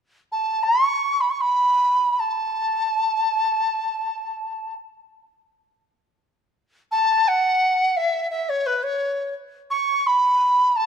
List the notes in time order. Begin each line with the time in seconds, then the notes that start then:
0.32 A5
0.63 C#6
1.20 B5
1.30 C#6
1.41 B5
2.19 A5
6.91 A5
7.28 F#5
7.97 E5
8.30 E5
8.49 C#5
8.66 B4
8.83 C#5
9.70 C#6
10.07 B5
10.76 A5